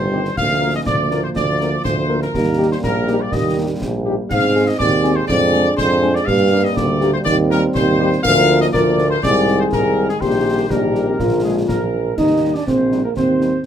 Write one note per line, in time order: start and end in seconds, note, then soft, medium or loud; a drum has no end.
0.00 0.29 G1 medium
0.00 0.34 D#3 medium
0.00 0.34 G3 medium
0.00 0.34 C5 medium
0.12 0.21 C4 medium
0.12 0.21 D#4 medium
0.12 0.21 G4 medium
0.25 snare soft
0.37 0.78 D2 medium
0.37 2.34 F3 medium
0.37 2.30 A#3 medium
0.37 0.72 F5 medium
0.37 concert bass drum medium
0.37 snare medium
0.37 crash soft
0.61 0.70 A#3 soft
0.61 0.70 F4 soft
0.61 0.70 A#4 soft
0.76 0.81 D#5 medium
0.86 1.28 D2 medium
0.86 1.21 D5 medium
0.86 concert bass drum medium
0.86 snare medium
1.11 1.20 A#3 medium
1.11 1.20 F4 medium
1.11 1.20 A#4 medium
1.11 snare soft
1.24 1.29 C5 medium
1.35 1.76 D2 medium
1.35 1.82 D5 medium
1.35 concert bass drum medium
1.35 snare medium
1.60 1.69 A#3 soft
1.60 1.69 F4 soft
1.60 1.69 A#4 soft
1.60 snare soft
1.84 2.26 D2 medium
1.84 2.19 C5 medium
1.84 concert bass drum medium
1.84 snare medium
2.09 2.18 A#3 medium
2.09 2.18 F4 medium
2.09 2.18 A#4 medium
2.22 2.68 A#4 medium
2.22 snare soft
2.33 2.75 D#2 medium
2.33 4.27 G3 medium
2.33 4.27 A#3 medium
2.33 concert bass drum medium
2.33 snare medium
2.58 2.67 A#3 soft
2.58 2.68 D#4 soft
2.58 2.67 G4 medium
2.72 2.78 C5 medium
2.83 3.24 A#1 medium
2.83 3.18 A#4 medium
2.83 concert bass drum medium
2.83 snare medium
3.07 3.17 A#3 medium
3.07 3.17 D#4 medium
3.07 3.16 G4 medium
3.07 snare soft
3.21 3.33 D5 medium
3.32 3.73 D#2 medium
3.32 3.57 D#5 medium
3.32 concert bass drum medium
3.32 snare medium
3.57 3.66 A#3 soft
3.57 3.66 D#4 medium
3.57 3.66 G4 medium
3.81 4.18 A#1 medium
3.81 concert bass drum medium
3.81 snare medium
4.06 4.15 A#3 medium
4.06 4.15 D#4 medium
4.06 4.15 G4 medium
4.30 4.72 G#2 medium
4.30 6.27 G#3 medium
4.30 5.25 C4 medium
4.30 4.65 F5 loud
4.30 concert bass drum medium
4.30 snare medium
4.30 crash soft
4.55 4.64 C4 medium
4.55 4.64 D#4 medium
4.55 4.64 G#4 medium
4.68 4.80 D#5 medium
4.79 5.21 D#2 medium
4.79 5.14 D5 loud
4.79 concert bass drum medium
4.79 snare medium
5.03 5.13 C4 medium
5.03 5.12 D#4 medium
5.03 5.12 G#4 medium
5.03 snare medium
5.16 5.29 C5 medium
5.28 5.70 F2 medium
5.28 6.27 D4 medium
5.28 5.74 D5 loud
5.28 concert bass drum medium
5.28 snare medium
5.53 5.62 G#3 medium
5.53 5.62 D4 medium
5.53 5.62 G#4 medium
5.53 snare soft
5.77 6.19 F2 medium
5.77 6.12 C5 medium
5.77 concert bass drum medium
5.77 snare medium
6.02 6.11 G#3 medium
6.02 6.11 D4 medium
6.02 6.11 G#4 medium
6.15 6.28 D5 medium
6.15 snare soft
6.26 6.68 G2 medium
6.26 8.24 G3 medium
6.26 7.22 A#3 medium
6.26 6.64 F5 loud
6.26 concert bass drum medium
6.26 snare medium
6.52 6.61 A#3 medium
6.52 6.61 D4 medium
6.52 6.61 G4 medium
6.65 6.77 D#5 medium
6.76 7.17 D2 medium
6.76 7.13 D5 medium
6.76 concert bass drum medium
6.76 snare medium
7.01 7.11 A#3 medium
7.01 7.10 D4 medium
7.01 7.11 G4 medium
7.01 snare medium
7.14 7.19 C5 medium
7.25 7.67 D#2 medium
7.25 8.25 C4 medium
7.25 7.36 D5 loud
7.25 concert bass drum medium
7.25 snare medium
7.51 7.60 G3 medium
7.51 7.60 D#4 medium
7.51 7.60 G4 medium
7.51 7.62 A#4 medium
7.51 snare medium
7.75 8.16 D#2 medium
7.75 8.21 C5 medium
7.75 concert bass drum medium
7.75 snare medium
8.00 8.09 G3 medium
8.00 8.09 D#4 medium
8.00 8.09 G4 medium
8.13 snare soft
8.23 8.68 D2 medium
8.23 8.70 F3 medium
8.23 9.06 F3 medium
8.23 9.06 A#3 medium
8.23 8.70 F4 medium
8.23 8.70 A#4 medium
8.23 8.58 F5 loud
8.23 concert bass drum medium
8.23 snare medium
8.23 crash soft
8.62 8.67 D#5 medium
8.73 9.17 D2 medium
8.73 9.19 F3 medium
8.73 9.19 F4 medium
8.73 9.19 A#4 medium
8.73 9.07 D5 medium
8.73 concert bass drum medium
8.73 snare medium
8.99 snare soft
9.11 9.22 C5 medium
9.23 9.66 C2 medium
9.23 11.20 D#3 medium
9.23 10.17 G#3 medium
9.23 10.21 G#3 medium
9.23 10.17 D#4 medium
9.23 10.21 G#4 medium
9.23 9.57 D5 medium
9.23 concert bass drum medium
9.23 snare medium
9.48 snare soft
9.60 9.66 C5 medium
9.73 10.08 C2 medium
9.73 10.07 A#4 medium
9.73 concert bass drum medium
9.73 snare medium
10.09 10.21 G#4 medium
10.09 snare soft
10.21 10.64 A#1 medium
10.21 11.20 G3 medium
10.21 10.67 A#3 medium
10.21 10.67 D#4 medium
10.21 10.67 G4 medium
10.21 10.70 C5 medium
10.21 concert bass drum medium
10.21 snare medium
10.70 11.14 A#1 medium
10.70 11.16 A#3 soft
10.70 11.10 D4 medium
10.70 11.16 D#4 medium
10.70 11.16 G4 medium
10.70 11.44 A#4 medium
10.70 concert bass drum medium
10.70 snare medium
10.95 snare soft
11.08 11.18 C4 soft
11.19 11.63 A#1 medium
11.19 11.89 D3 soft
11.19 11.93 F3 soft
11.19 11.42 A#3 medium
11.19 11.89 A#3 medium
11.19 11.93 D4 medium
11.19 11.89 F4 medium
11.19 concert bass drum medium
11.19 snare medium
11.44 11.67 G#3 medium
11.44 11.55 G#4 soft
11.68 12.12 A#1 medium
11.68 12.15 A#3 medium
11.68 12.14 A#4 medium
11.68 concert bass drum medium
11.68 snare medium
12.18 12.59 D#2 medium
12.18 12.52 D#4 medium
12.18 12.55 D#5 medium
12.18 concert bass drum medium
12.18 snare medium
12.18 crash soft
12.42 12.51 G3 soft
12.42 12.51 D#4 soft
12.54 12.67 D4 medium
12.54 12.67 D5 medium
12.67 13.08 A#1 medium
12.67 13.01 C4 medium
12.67 13.04 C5 medium
12.67 concert bass drum medium
12.67 snare medium
12.91 13.00 G3 soft
12.91 13.00 D#4 soft
12.91 snare soft
13.04 13.16 A#3 medium
13.04 13.10 A#4 soft
13.16 13.57 D#2 medium
13.16 13.62 C4 medium
13.16 13.63 C5 medium
13.16 concert bass drum medium
13.16 snare medium
13.41 13.50 G3 soft
13.41 13.50 D#4 soft
13.41 snare soft